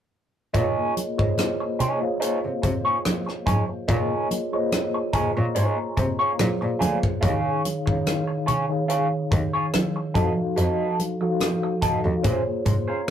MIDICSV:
0, 0, Header, 1, 6, 480
1, 0, Start_track
1, 0, Key_signature, -5, "minor"
1, 0, Tempo, 835655
1, 314, Time_signature, 4, 2, 24, 8
1, 7526, End_track
2, 0, Start_track
2, 0, Title_t, "Tine electric piano"
2, 0, Program_c, 0, 4
2, 306, Note_on_c, 0, 58, 73
2, 308, Note_on_c, 0, 65, 64
2, 311, Note_on_c, 0, 68, 64
2, 313, Note_on_c, 0, 70, 61
2, 315, Note_on_c, 0, 73, 66
2, 316, Note_on_c, 0, 75, 76
2, 417, Control_c, 0, 64, 127
2, 616, Note_off_c, 0, 58, 0
2, 617, Note_off_c, 0, 65, 0
2, 618, Note_off_c, 0, 68, 0
2, 619, Note_off_c, 0, 70, 0
2, 620, Note_off_c, 0, 73, 0
2, 621, Note_off_c, 0, 75, 0
2, 673, Note_on_c, 0, 58, 66
2, 675, Note_on_c, 0, 65, 66
2, 677, Note_on_c, 0, 68, 62
2, 682, Note_on_c, 0, 72, 69
2, 683, Note_on_c, 0, 73, 62
2, 683, Note_on_c, 0, 75, 78
2, 1073, Note_off_c, 0, 58, 0
2, 1074, Note_off_c, 0, 65, 0
2, 1075, Note_off_c, 0, 68, 0
2, 1077, Note_off_c, 0, 72, 0
2, 1078, Note_off_c, 0, 73, 0
2, 1078, Note_off_c, 0, 75, 0
2, 1152, Note_on_c, 0, 58, 60
2, 1154, Note_on_c, 0, 65, 55
2, 1157, Note_on_c, 0, 68, 55
2, 1159, Note_on_c, 0, 72, 58
2, 1163, Note_on_c, 0, 73, 58
2, 1165, Note_on_c, 0, 77, 74
2, 1953, Note_off_c, 0, 58, 0
2, 1954, Note_off_c, 0, 65, 0
2, 1956, Note_off_c, 0, 68, 0
2, 1957, Note_off_c, 0, 72, 0
2, 1959, Note_off_c, 0, 73, 0
2, 1960, Note_off_c, 0, 77, 0
2, 2228, Note_on_c, 0, 58, 74
2, 2231, Note_on_c, 0, 65, 66
2, 2233, Note_on_c, 0, 68, 63
2, 2235, Note_on_c, 0, 70, 65
2, 2237, Note_on_c, 0, 73, 64
2, 2239, Note_on_c, 0, 75, 80
2, 2536, Note_off_c, 0, 58, 0
2, 2538, Note_off_c, 0, 65, 0
2, 2538, Note_off_c, 0, 68, 0
2, 2539, Note_off_c, 0, 70, 0
2, 2540, Note_off_c, 0, 73, 0
2, 2541, Note_off_c, 0, 75, 0
2, 2597, Note_on_c, 0, 58, 68
2, 2598, Note_on_c, 0, 65, 68
2, 2601, Note_on_c, 0, 68, 66
2, 2605, Note_on_c, 0, 72, 65
2, 2606, Note_on_c, 0, 73, 65
2, 2607, Note_on_c, 0, 75, 77
2, 2950, Note_on_c, 0, 89, 55
2, 2952, Note_on_c, 0, 85, 46
2, 2953, Note_off_c, 0, 72, 0
2, 2954, Note_off_c, 0, 73, 0
2, 2954, Note_off_c, 0, 75, 0
2, 2995, Note_off_c, 0, 58, 0
2, 2995, Note_off_c, 0, 65, 0
2, 2996, Note_off_c, 0, 68, 0
2, 3071, Note_off_c, 0, 85, 0
2, 3074, Note_off_c, 0, 89, 0
2, 3078, Note_on_c, 0, 85, 58
2, 3082, Note_on_c, 0, 82, 42
2, 3184, Note_off_c, 0, 85, 0
2, 3186, Note_off_c, 0, 82, 0
2, 3190, Note_on_c, 0, 84, 59
2, 3194, Note_on_c, 0, 80, 57
2, 3314, Note_off_c, 0, 84, 0
2, 3316, Note_off_c, 0, 80, 0
2, 3322, Note_on_c, 0, 82, 59
2, 3549, Note_off_c, 0, 82, 0
2, 3562, Note_on_c, 0, 77, 52
2, 3565, Note_on_c, 0, 73, 45
2, 3663, Note_on_c, 0, 58, 81
2, 3667, Note_on_c, 0, 65, 63
2, 3669, Note_on_c, 0, 68, 72
2, 3671, Note_on_c, 0, 72, 61
2, 3673, Note_on_c, 0, 74, 78
2, 3678, Control_c, 0, 64, 0
2, 3789, Note_off_c, 0, 77, 0
2, 3791, Note_off_c, 0, 73, 0
2, 3793, Control_c, 0, 64, 127
2, 4075, Note_off_c, 0, 58, 0
2, 4077, Note_off_c, 0, 65, 0
2, 4078, Note_off_c, 0, 68, 0
2, 4079, Note_off_c, 0, 72, 0
2, 4080, Note_off_c, 0, 74, 0
2, 4147, Note_on_c, 0, 51, 75
2, 4149, Note_on_c, 0, 63, 70
2, 4151, Note_on_c, 0, 68, 66
2, 4153, Note_on_c, 0, 73, 70
2, 4156, Note_on_c, 0, 77, 80
2, 4159, Control_c, 0, 64, 0
2, 4245, Control_c, 0, 64, 127
2, 4455, Note_off_c, 0, 51, 0
2, 4457, Note_off_c, 0, 63, 0
2, 4458, Note_off_c, 0, 68, 0
2, 4459, Note_off_c, 0, 73, 0
2, 4460, Note_off_c, 0, 77, 0
2, 4515, Note_on_c, 0, 51, 75
2, 4520, Note_on_c, 0, 63, 69
2, 4521, Note_on_c, 0, 68, 66
2, 4524, Note_on_c, 0, 73, 68
2, 4528, Note_on_c, 0, 77, 82
2, 4914, Note_off_c, 0, 51, 0
2, 4916, Note_off_c, 0, 63, 0
2, 4917, Note_off_c, 0, 68, 0
2, 4918, Note_off_c, 0, 73, 0
2, 4920, Note_off_c, 0, 77, 0
2, 4993, Note_on_c, 0, 51, 67
2, 4996, Note_on_c, 0, 63, 58
2, 4999, Note_on_c, 0, 68, 60
2, 5003, Note_on_c, 0, 73, 62
2, 5003, Note_on_c, 0, 77, 66
2, 5794, Note_off_c, 0, 51, 0
2, 5796, Note_off_c, 0, 63, 0
2, 5797, Note_off_c, 0, 68, 0
2, 5799, Note_off_c, 0, 73, 0
2, 5799, Note_off_c, 0, 77, 0
2, 5826, Note_on_c, 0, 53, 82
2, 5828, Note_on_c, 0, 63, 71
2, 5830, Note_on_c, 0, 66, 74
2, 5834, Note_on_c, 0, 69, 68
2, 5834, Note_on_c, 0, 75, 67
2, 5838, Control_c, 0, 64, 0
2, 5874, Note_off_c, 0, 75, 0
2, 5874, Note_on_c, 0, 77, 77
2, 5955, Control_c, 0, 64, 127
2, 6333, Note_off_c, 0, 53, 0
2, 6334, Note_off_c, 0, 63, 0
2, 6335, Note_off_c, 0, 66, 0
2, 6337, Note_off_c, 0, 69, 0
2, 6357, Note_off_c, 0, 77, 0
2, 6437, Note_on_c, 0, 53, 71
2, 6440, Note_on_c, 0, 63, 67
2, 6444, Note_on_c, 0, 66, 72
2, 6446, Note_on_c, 0, 69, 64
2, 6449, Note_on_c, 0, 77, 80
2, 6835, Note_off_c, 0, 53, 0
2, 6837, Note_off_c, 0, 63, 0
2, 6838, Note_off_c, 0, 66, 0
2, 6840, Note_off_c, 0, 69, 0
2, 6841, Note_off_c, 0, 77, 0
2, 6915, Note_on_c, 0, 53, 61
2, 6919, Note_on_c, 0, 63, 56
2, 6920, Note_on_c, 0, 66, 52
2, 6924, Note_on_c, 0, 69, 59
2, 6925, Note_on_c, 0, 77, 65
2, 7027, Note_on_c, 0, 58, 74
2, 7029, Note_off_c, 0, 53, 0
2, 7030, Note_on_c, 0, 65, 73
2, 7031, Note_off_c, 0, 63, 0
2, 7031, Note_off_c, 0, 66, 0
2, 7033, Note_off_c, 0, 69, 0
2, 7033, Note_on_c, 0, 68, 74
2, 7034, Note_off_c, 0, 77, 0
2, 7037, Note_on_c, 0, 73, 81
2, 7041, Control_c, 0, 64, 0
2, 7158, Control_c, 0, 64, 127
2, 7275, Note_off_c, 0, 73, 0
2, 7275, Note_on_c, 0, 84, 55
2, 7394, Note_off_c, 0, 84, 0
2, 7407, Note_on_c, 0, 77, 47
2, 7407, Note_on_c, 0, 82, 53
2, 7409, Note_on_c, 0, 73, 45
2, 7507, Note_off_c, 0, 82, 0
2, 7509, Note_off_c, 0, 77, 0
2, 7511, Note_off_c, 0, 73, 0
2, 7526, Note_off_c, 0, 58, 0
2, 7526, Note_off_c, 0, 65, 0
2, 7526, Note_off_c, 0, 68, 0
2, 7526, End_track
3, 0, Start_track
3, 0, Title_t, "Clean electric guitar"
3, 0, Program_c, 1, 27
3, 308, Note_on_c, 1, 63, 58
3, 314, Note_on_c, 1, 68, 69
3, 316, Note_on_c, 1, 73, 76
3, 533, Note_off_c, 1, 63, 0
3, 536, Note_off_c, 1, 68, 0
3, 537, Note_off_c, 1, 73, 0
3, 1029, Note_on_c, 1, 63, 66
3, 1034, Note_on_c, 1, 68, 68
3, 1038, Note_on_c, 1, 73, 74
3, 1151, Note_off_c, 1, 73, 0
3, 1155, Note_off_c, 1, 63, 0
3, 1158, Note_off_c, 1, 68, 0
3, 1263, Note_on_c, 1, 63, 62
3, 1269, Note_on_c, 1, 68, 70
3, 1273, Note_on_c, 1, 73, 72
3, 1365, Note_off_c, 1, 63, 0
3, 1368, Note_off_c, 1, 68, 0
3, 1370, Note_off_c, 1, 73, 0
3, 1635, Note_on_c, 1, 73, 44
3, 1640, Note_on_c, 1, 68, 41
3, 1642, Note_on_c, 1, 63, 41
3, 1704, Note_off_c, 1, 73, 0
3, 1706, Note_off_c, 1, 68, 0
3, 1707, Note_off_c, 1, 63, 0
3, 1987, Note_on_c, 1, 63, 62
3, 1989, Note_on_c, 1, 68, 58
3, 1994, Note_on_c, 1, 73, 60
3, 2087, Note_off_c, 1, 63, 0
3, 2088, Note_off_c, 1, 68, 0
3, 2090, Note_off_c, 1, 73, 0
3, 2229, Note_on_c, 1, 63, 56
3, 2232, Note_on_c, 1, 68, 62
3, 2237, Note_on_c, 1, 73, 67
3, 2452, Note_off_c, 1, 63, 0
3, 2454, Note_off_c, 1, 68, 0
3, 2456, Note_off_c, 1, 73, 0
3, 2947, Note_on_c, 1, 63, 67
3, 2951, Note_on_c, 1, 68, 73
3, 2954, Note_on_c, 1, 73, 69
3, 3047, Note_off_c, 1, 63, 0
3, 3049, Note_off_c, 1, 68, 0
3, 3050, Note_off_c, 1, 73, 0
3, 3187, Note_on_c, 1, 63, 67
3, 3192, Note_on_c, 1, 68, 67
3, 3193, Note_on_c, 1, 73, 79
3, 3313, Note_off_c, 1, 63, 0
3, 3316, Note_off_c, 1, 68, 0
3, 3317, Note_off_c, 1, 73, 0
3, 3555, Note_on_c, 1, 73, 59
3, 3561, Note_on_c, 1, 68, 49
3, 3563, Note_on_c, 1, 63, 40
3, 3623, Note_off_c, 1, 73, 0
3, 3626, Note_off_c, 1, 68, 0
3, 3627, Note_off_c, 1, 63, 0
3, 3902, Note_on_c, 1, 65, 71
3, 3907, Note_on_c, 1, 68, 63
3, 3910, Note_on_c, 1, 74, 66
3, 4004, Note_off_c, 1, 65, 0
3, 4006, Note_off_c, 1, 68, 0
3, 4008, Note_off_c, 1, 74, 0
3, 4141, Note_on_c, 1, 65, 74
3, 4146, Note_on_c, 1, 68, 74
3, 4149, Note_on_c, 1, 73, 81
3, 4369, Note_off_c, 1, 65, 0
3, 4371, Note_off_c, 1, 68, 0
3, 4373, Note_off_c, 1, 73, 0
3, 4861, Note_on_c, 1, 65, 60
3, 4865, Note_on_c, 1, 68, 64
3, 4867, Note_on_c, 1, 73, 70
3, 4964, Note_off_c, 1, 65, 0
3, 4966, Note_off_c, 1, 68, 0
3, 4967, Note_off_c, 1, 73, 0
3, 5102, Note_on_c, 1, 65, 66
3, 5108, Note_on_c, 1, 68, 76
3, 5111, Note_on_c, 1, 73, 81
3, 5205, Note_off_c, 1, 65, 0
3, 5208, Note_off_c, 1, 68, 0
3, 5209, Note_off_c, 1, 73, 0
3, 5477, Note_on_c, 1, 73, 48
3, 5483, Note_on_c, 1, 68, 46
3, 5487, Note_on_c, 1, 65, 41
3, 5544, Note_off_c, 1, 73, 0
3, 5547, Note_off_c, 1, 68, 0
3, 5549, Note_off_c, 1, 65, 0
3, 5826, Note_on_c, 1, 66, 65
3, 5828, Note_on_c, 1, 69, 66
3, 5831, Note_on_c, 1, 75, 65
3, 5927, Note_off_c, 1, 66, 0
3, 5928, Note_off_c, 1, 69, 0
3, 5929, Note_off_c, 1, 75, 0
3, 6067, Note_on_c, 1, 66, 59
3, 6070, Note_on_c, 1, 69, 62
3, 6073, Note_on_c, 1, 75, 66
3, 6292, Note_off_c, 1, 66, 0
3, 6294, Note_off_c, 1, 69, 0
3, 6295, Note_off_c, 1, 75, 0
3, 6787, Note_on_c, 1, 66, 56
3, 6792, Note_on_c, 1, 69, 61
3, 6793, Note_on_c, 1, 75, 61
3, 6887, Note_off_c, 1, 66, 0
3, 6890, Note_off_c, 1, 69, 0
3, 6890, Note_off_c, 1, 75, 0
3, 7027, Note_on_c, 1, 61, 68
3, 7032, Note_on_c, 1, 68, 78
3, 7034, Note_on_c, 1, 72, 74
3, 7127, Note_off_c, 1, 61, 0
3, 7130, Note_off_c, 1, 68, 0
3, 7131, Note_off_c, 1, 72, 0
3, 7396, Note_on_c, 1, 72, 44
3, 7399, Note_on_c, 1, 68, 39
3, 7403, Note_on_c, 1, 61, 39
3, 7464, Note_off_c, 1, 72, 0
3, 7465, Note_off_c, 1, 68, 0
3, 7467, Note_off_c, 1, 61, 0
3, 7526, End_track
4, 0, Start_track
4, 0, Title_t, "Cello"
4, 0, Program_c, 2, 42
4, 313, Note_on_c, 2, 46, 92
4, 359, Note_off_c, 2, 46, 0
4, 687, Note_on_c, 2, 44, 67
4, 733, Note_off_c, 2, 44, 0
4, 1405, Note_on_c, 2, 48, 42
4, 1440, Note_off_c, 2, 48, 0
4, 1514, Note_on_c, 2, 48, 75
4, 1560, Note_off_c, 2, 48, 0
4, 1993, Note_on_c, 2, 44, 79
4, 2039, Note_off_c, 2, 44, 0
4, 2233, Note_on_c, 2, 46, 106
4, 2279, Note_off_c, 2, 46, 0
4, 2951, Note_on_c, 2, 46, 42
4, 2992, Note_off_c, 2, 46, 0
4, 3085, Note_on_c, 2, 46, 87
4, 3131, Note_off_c, 2, 46, 0
4, 3194, Note_on_c, 2, 44, 72
4, 3240, Note_off_c, 2, 44, 0
4, 3432, Note_on_c, 2, 48, 82
4, 3478, Note_off_c, 2, 48, 0
4, 3675, Note_on_c, 2, 46, 95
4, 3721, Note_off_c, 2, 46, 0
4, 3805, Note_on_c, 2, 46, 70
4, 3851, Note_off_c, 2, 46, 0
4, 3916, Note_on_c, 2, 38, 80
4, 3962, Note_off_c, 2, 38, 0
4, 4154, Note_on_c, 2, 39, 102
4, 4200, Note_off_c, 2, 39, 0
4, 4524, Note_on_c, 2, 37, 74
4, 4570, Note_off_c, 2, 37, 0
4, 5354, Note_on_c, 2, 39, 86
4, 5400, Note_off_c, 2, 39, 0
4, 5833, Note_on_c, 2, 41, 86
4, 5879, Note_off_c, 2, 41, 0
4, 6072, Note_on_c, 2, 41, 82
4, 6118, Note_off_c, 2, 41, 0
4, 6792, Note_on_c, 2, 39, 39
4, 6834, Note_off_c, 2, 39, 0
4, 6922, Note_on_c, 2, 39, 79
4, 6968, Note_off_c, 2, 39, 0
4, 7036, Note_on_c, 2, 46, 78
4, 7082, Note_off_c, 2, 46, 0
4, 7274, Note_on_c, 2, 44, 83
4, 7320, Note_off_c, 2, 44, 0
4, 7526, End_track
5, 0, Start_track
5, 0, Title_t, "Muted clean electric guitar strokes"
5, 681, Note_on_c, 9, 29, 37
5, 738, Note_off_c, 9, 29, 0
5, 921, Note_on_c, 9, 29, 45
5, 979, Note_off_c, 9, 29, 0
5, 1158, Note_on_c, 9, 29, 33
5, 1215, Note_off_c, 9, 29, 0
5, 1505, Note_on_c, 9, 29, 28
5, 1563, Note_off_c, 9, 29, 0
5, 1875, Note_on_c, 9, 29, 29
5, 1932, Note_off_c, 9, 29, 0
5, 2120, Note_on_c, 9, 29, 35
5, 2178, Note_off_c, 9, 29, 0
5, 2604, Note_on_c, 9, 29, 34
5, 2661, Note_off_c, 9, 29, 0
5, 2840, Note_on_c, 9, 29, 45
5, 2897, Note_off_c, 9, 29, 0
5, 3077, Note_on_c, 9, 29, 33
5, 3135, Note_off_c, 9, 29, 0
5, 3427, Note_on_c, 9, 29, 32
5, 3485, Note_off_c, 9, 29, 0
5, 3797, Note_on_c, 9, 29, 39
5, 3854, Note_off_c, 9, 29, 0
5, 4514, Note_on_c, 9, 29, 41
5, 4571, Note_off_c, 9, 29, 0
5, 4753, Note_on_c, 9, 29, 42
5, 4811, Note_off_c, 9, 29, 0
5, 4999, Note_on_c, 9, 29, 29
5, 5056, Note_off_c, 9, 29, 0
5, 5347, Note_on_c, 9, 29, 30
5, 5405, Note_off_c, 9, 29, 0
5, 5720, Note_on_c, 9, 29, 40
5, 5778, Note_off_c, 9, 29, 0
5, 5960, Note_on_c, 9, 29, 33
5, 6017, Note_off_c, 9, 29, 0
5, 6438, Note_on_c, 9, 29, 36
5, 6495, Note_off_c, 9, 29, 0
5, 6682, Note_on_c, 9, 29, 46
5, 6740, Note_off_c, 9, 29, 0
5, 6919, Note_on_c, 9, 29, 33
5, 6977, Note_off_c, 9, 29, 0
5, 7268, Note_on_c, 9, 29, 24
5, 7326, Note_off_c, 9, 29, 0
5, 7526, End_track
6, 0, Start_track
6, 0, Title_t, "Drums"
6, 313, Note_on_c, 9, 36, 92
6, 314, Note_on_c, 9, 42, 75
6, 370, Note_off_c, 9, 36, 0
6, 371, Note_off_c, 9, 42, 0
6, 557, Note_on_c, 9, 42, 62
6, 557, Note_on_c, 9, 62, 39
6, 614, Note_off_c, 9, 42, 0
6, 614, Note_off_c, 9, 62, 0
6, 685, Note_on_c, 9, 36, 78
6, 742, Note_off_c, 9, 36, 0
6, 792, Note_on_c, 9, 63, 52
6, 795, Note_on_c, 9, 42, 80
6, 798, Note_on_c, 9, 37, 96
6, 849, Note_off_c, 9, 63, 0
6, 852, Note_off_c, 9, 42, 0
6, 856, Note_off_c, 9, 37, 0
6, 1034, Note_on_c, 9, 42, 70
6, 1034, Note_on_c, 9, 64, 66
6, 1092, Note_off_c, 9, 42, 0
6, 1092, Note_off_c, 9, 64, 0
6, 1274, Note_on_c, 9, 42, 82
6, 1332, Note_off_c, 9, 42, 0
6, 1513, Note_on_c, 9, 36, 73
6, 1513, Note_on_c, 9, 62, 37
6, 1516, Note_on_c, 9, 42, 54
6, 1570, Note_off_c, 9, 62, 0
6, 1571, Note_off_c, 9, 36, 0
6, 1573, Note_off_c, 9, 42, 0
6, 1754, Note_on_c, 9, 37, 90
6, 1754, Note_on_c, 9, 42, 71
6, 1758, Note_on_c, 9, 63, 67
6, 1811, Note_off_c, 9, 37, 0
6, 1811, Note_off_c, 9, 42, 0
6, 1816, Note_off_c, 9, 63, 0
6, 1888, Note_on_c, 9, 37, 32
6, 1946, Note_off_c, 9, 37, 0
6, 1991, Note_on_c, 9, 63, 67
6, 1992, Note_on_c, 9, 36, 73
6, 1996, Note_on_c, 9, 42, 62
6, 2049, Note_off_c, 9, 36, 0
6, 2049, Note_off_c, 9, 63, 0
6, 2053, Note_off_c, 9, 42, 0
6, 2232, Note_on_c, 9, 36, 95
6, 2234, Note_on_c, 9, 42, 71
6, 2290, Note_off_c, 9, 36, 0
6, 2292, Note_off_c, 9, 42, 0
6, 2475, Note_on_c, 9, 62, 41
6, 2476, Note_on_c, 9, 42, 65
6, 2533, Note_off_c, 9, 62, 0
6, 2534, Note_off_c, 9, 42, 0
6, 2712, Note_on_c, 9, 42, 79
6, 2712, Note_on_c, 9, 63, 52
6, 2715, Note_on_c, 9, 37, 86
6, 2769, Note_off_c, 9, 42, 0
6, 2770, Note_off_c, 9, 63, 0
6, 2773, Note_off_c, 9, 37, 0
6, 2949, Note_on_c, 9, 36, 77
6, 2950, Note_on_c, 9, 42, 71
6, 3007, Note_off_c, 9, 36, 0
6, 3007, Note_off_c, 9, 42, 0
6, 3191, Note_on_c, 9, 42, 80
6, 3249, Note_off_c, 9, 42, 0
6, 3431, Note_on_c, 9, 36, 71
6, 3431, Note_on_c, 9, 42, 52
6, 3431, Note_on_c, 9, 62, 41
6, 3431, Note_on_c, 9, 64, 51
6, 3488, Note_off_c, 9, 62, 0
6, 3488, Note_off_c, 9, 64, 0
6, 3489, Note_off_c, 9, 36, 0
6, 3489, Note_off_c, 9, 42, 0
6, 3672, Note_on_c, 9, 42, 76
6, 3673, Note_on_c, 9, 37, 108
6, 3674, Note_on_c, 9, 63, 63
6, 3730, Note_off_c, 9, 37, 0
6, 3730, Note_off_c, 9, 42, 0
6, 3732, Note_off_c, 9, 63, 0
6, 3912, Note_on_c, 9, 63, 67
6, 3915, Note_on_c, 9, 42, 61
6, 3969, Note_off_c, 9, 63, 0
6, 3972, Note_off_c, 9, 42, 0
6, 4040, Note_on_c, 9, 36, 75
6, 4098, Note_off_c, 9, 36, 0
6, 4151, Note_on_c, 9, 36, 102
6, 4151, Note_on_c, 9, 62, 25
6, 4154, Note_on_c, 9, 42, 72
6, 4209, Note_off_c, 9, 36, 0
6, 4209, Note_off_c, 9, 62, 0
6, 4212, Note_off_c, 9, 42, 0
6, 4395, Note_on_c, 9, 42, 69
6, 4397, Note_on_c, 9, 62, 41
6, 4452, Note_off_c, 9, 42, 0
6, 4454, Note_off_c, 9, 62, 0
6, 4523, Note_on_c, 9, 36, 78
6, 4580, Note_off_c, 9, 36, 0
6, 4633, Note_on_c, 9, 42, 79
6, 4633, Note_on_c, 9, 63, 52
6, 4636, Note_on_c, 9, 37, 91
6, 4691, Note_off_c, 9, 42, 0
6, 4691, Note_off_c, 9, 63, 0
6, 4694, Note_off_c, 9, 37, 0
6, 4870, Note_on_c, 9, 42, 74
6, 4873, Note_on_c, 9, 64, 67
6, 4928, Note_off_c, 9, 42, 0
6, 4930, Note_off_c, 9, 64, 0
6, 5110, Note_on_c, 9, 42, 75
6, 5167, Note_off_c, 9, 42, 0
6, 5351, Note_on_c, 9, 62, 41
6, 5352, Note_on_c, 9, 36, 83
6, 5353, Note_on_c, 9, 42, 51
6, 5408, Note_off_c, 9, 62, 0
6, 5409, Note_off_c, 9, 36, 0
6, 5411, Note_off_c, 9, 42, 0
6, 5593, Note_on_c, 9, 37, 99
6, 5593, Note_on_c, 9, 42, 79
6, 5598, Note_on_c, 9, 63, 68
6, 5650, Note_off_c, 9, 42, 0
6, 5651, Note_off_c, 9, 37, 0
6, 5656, Note_off_c, 9, 63, 0
6, 5832, Note_on_c, 9, 36, 90
6, 5833, Note_on_c, 9, 63, 67
6, 5835, Note_on_c, 9, 42, 58
6, 5890, Note_off_c, 9, 36, 0
6, 5890, Note_off_c, 9, 63, 0
6, 5892, Note_off_c, 9, 42, 0
6, 6073, Note_on_c, 9, 42, 76
6, 6074, Note_on_c, 9, 62, 25
6, 6131, Note_off_c, 9, 42, 0
6, 6131, Note_off_c, 9, 62, 0
6, 6316, Note_on_c, 9, 42, 60
6, 6316, Note_on_c, 9, 62, 39
6, 6373, Note_off_c, 9, 42, 0
6, 6373, Note_off_c, 9, 62, 0
6, 6551, Note_on_c, 9, 63, 53
6, 6553, Note_on_c, 9, 42, 74
6, 6556, Note_on_c, 9, 37, 94
6, 6609, Note_off_c, 9, 63, 0
6, 6610, Note_off_c, 9, 42, 0
6, 6613, Note_off_c, 9, 37, 0
6, 6791, Note_on_c, 9, 36, 80
6, 6793, Note_on_c, 9, 42, 69
6, 6848, Note_off_c, 9, 36, 0
6, 6850, Note_off_c, 9, 42, 0
6, 7031, Note_on_c, 9, 42, 81
6, 7034, Note_on_c, 9, 36, 94
6, 7089, Note_off_c, 9, 42, 0
6, 7091, Note_off_c, 9, 36, 0
6, 7270, Note_on_c, 9, 62, 37
6, 7270, Note_on_c, 9, 64, 54
6, 7272, Note_on_c, 9, 36, 75
6, 7273, Note_on_c, 9, 42, 59
6, 7327, Note_off_c, 9, 62, 0
6, 7327, Note_off_c, 9, 64, 0
6, 7330, Note_off_c, 9, 36, 0
6, 7330, Note_off_c, 9, 42, 0
6, 7526, End_track
0, 0, End_of_file